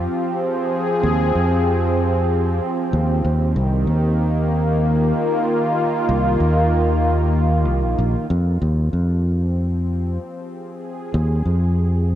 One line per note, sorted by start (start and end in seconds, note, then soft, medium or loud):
0.00 3.25 F3 medium
0.00 5.29 C4 medium
0.00 0.23 F4 medium
0.00 8.30 G4 medium
0.29 3.25 G#4 medium
1.03 1.32 D#2 medium
1.35 2.59 F2 medium
2.93 3.21 D#2 medium
3.24 3.53 D#2 medium
3.24 8.30 D#3 medium
3.56 3.84 C2 medium
3.64 10.34 A#3 medium
3.87 5.11 D#2 medium
4.69 10.34 F4 medium
6.09 6.37 C2 medium
6.40 7.67 D#2 medium
7.67 7.85 C2 medium
7.85 7.97 A#1 medium
7.99 8.14 A#1 medium
8.30 8.58 F2 loud
8.30 12.15 F3 medium
8.60 8.90 D#2 medium
8.60 12.15 G4 medium
8.72 12.15 C4 medium
8.93 10.17 F2 medium
10.23 12.15 G#4 medium
11.14 11.42 D#2 loud
11.46 12.15 F2 medium